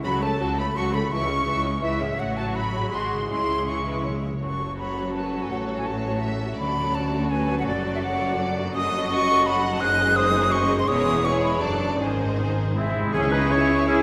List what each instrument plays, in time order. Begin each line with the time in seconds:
Already playing: harp C#3 A3 F#4
0.00 harp C#5
0.04 cello section C#2, double bass section C#2, timpani C#3, viola section F#3 F#4, violin section A4 B5, flute B5
0.22 viola section A3 A4, violin section C#5 A5, flute A5
0.40 cello section C#2, double bass section C#2, viola section F#3 F#4, violin section A4
0.57 viola section A3 A4, violin section C#5 B5, flute B5
0.76 cello section C#2, double bass section C#2, viola section F#3 F#4, violin section A4 C#6, flute C#6
0.93 harp C#3, viola section A3 A4, violin section C#5 B5, flute B5
0.98 harp G#3
1.02 harp E4
1.07 harp C#5, violin section C#6
1.11 double bass section C#2, cello section C#2, viola section E3 E4, violin section E5, flute C#6
1.29 viola section G#3 C#4, violin section C#5
1.46 double bass section C#2, cello section C#2, viola section E3 E4, violin section E5
1.64 viola section G#3 C#4, violin section C#5
1.82 cello section C#2, double bass section C#2, viola section E3 E4, violin section E5, flute E5
2.00 harp A2, viola section G#3 C#4, violin section C#5
2.06 harp F#3
2.10 harp F#4
2.15 viola section F#3 F#4, harp C#5, violin section F#5
2.19 double bass section A1, cello section A2, violin section C#5, flute F#5
2.37 flute A5, violin section A5
2.55 violin section B5, flute B5
2.74 harp G#2
2.79 harp G#3
2.83 harp F#4
2.88 viola section G#3 F#4, harp G#4, violin section G#4
2.92 double bass section G#1, cello section G#2, violin section C6, flute C6
3.12 harp C#3
3.16 harp G#3
3.21 harp E4
3.25 harp G#4
3.29 double bass section C#2, cello section C#3, timpani C#3, viola section G#3 E4, violin section G#4 C6, flute C6
3.38 timpani C#3
3.46 timpani C#3
3.54 timpani C#3
3.61 timpani C#3
3.67 timpani C#3, viola section G#3 E4, violin section G#4 C#6, flute C#6
3.77 timpani C#3
3.85 timpani C#3, violin section B4
3.92 timpani C#3
4.00 timpani C#3
4.05 timpani C#3, violin section C#5
4.16 timpani C#3
4.23 timpani C#3
4.31 timpani C#3
4.42 double bass section F#1, cello section F#2, harp F#2, viola section F#3 F#4, violin section A4 C#5, flute C#6
4.60 harp A3
4.78 harp F#4, violin section C#5, flute B5
4.97 harp A4
5.15 harp F#4, violin section B4, flute A5
5.34 harp C#4
5.42 flute G#5
5.51 double bass section A1, cello section A2, harp A2, violin section A4, flute F#5
5.69 harp A3
5.78 flute G#5
5.86 harp F#4, violin section C#5, flute A5
6.05 harp A4
6.22 harp F#4, violin section E5
6.41 harp C#4
6.58 cello section D2, double bass section D2, harp D3, viola section F#3 F#4, violin section A4 C#5 D5, flute B5
6.78 harp C#4
6.95 harp A4, flute A5
7.14 harp C#5
7.30 harp A4, violin section B4, flute G#5
7.50 harp F#4
7.59 flute F#5
7.67 double bass section F#1, harp F#2, cello section F#2, violin section A4 D5, flute D5
7.85 harp A3
7.95 flute E5
8.03 harp F#4, violin section C#5, flute F#5
8.21 harp A4
8.38 harp F#4, violin section D5
8.57 harp D4
8.74 harp F#2, viola section F#3 F#4, violin section A4 D#5, flute D#6
8.93 harp A3
9.10 harp F#4, flute C#6
9.28 harp A4
9.45 harp F#4, violin section F#5, flute B5
9.63 harp D#4
9.73 flute A5
9.80 double bass section F#1, harp F#2, cello section F#2, viola section G#3 D#4, violin section G#4 C5 D#5, flute F#6
9.99 harp G#3
10.16 harp G#4, violin section C5, flute D#6
10.35 harp C4
10.51 harp G#4, violin section D#5, flute C#6
10.71 harp C4
10.79 flute C6
10.88 double bass section E1, cello section E2, harp E2, viola section G#3 E4, violin section G#4 C#5, flute D#6
11.07 harp G#3
11.25 viola section G#3 E4, violin section G#4 C#5, harp G#4, flute C#6
11.42 harp C#4, flute B5
11.61 double bass section F#1, cello section F#2, harp F#2, viola section F#3 D4, violin section A4 D5, flute A5
11.81 harp D4 F#4
12.00 double bass section G#1, cello section G#2, timpani G#2, harp G#2, viola section D#3 D#4, violin section G#4 C5, flute G#5
12.16 timpani G#2, harp C4
12.24 timpani G#2
12.32 timpani G#2
12.38 timpani G#2, harp D#4
12.47 timpani G#2
12.55 timpani G#2, harp C5
12.63 timpani G#2
12.70 timpani G#2
12.75 timpani G#2, viola section G#3, oboe C4, harp D#4, clarinet E4, trumpet section E4, flute E5
12.86 timpani G#2
12.94 timpani G#2, harp C4
13.02 timpani G#2
13.13 double bass section C#2, timpani C#3, harp C#3, french horn section G#3 E4, cello section C#4, viola section C#4, oboe E4, clarinet G#4, trumpet section G#4, violin section E5 G#5 C#6, flute G#5
13.23 harp G#3
13.31 harp C#4, viola section D#4, oboe G#4, clarinet B4, trumpet section B4, flute B5
13.42 harp E4
13.50 french horn section G#3 E4, viola section E4, oboe G#4, harp G#4, clarinet C#5, trumpet section C#5, flute C#6
13.60 harp C#5
13.69 harp E5
13.78 harp G#5
13.87 french horn section G#3 E4, viola section C#4, cello section E4, oboe E4, clarinet G#4, trumpet section G#4, harp E5, flute G#5
13.96 harp C#5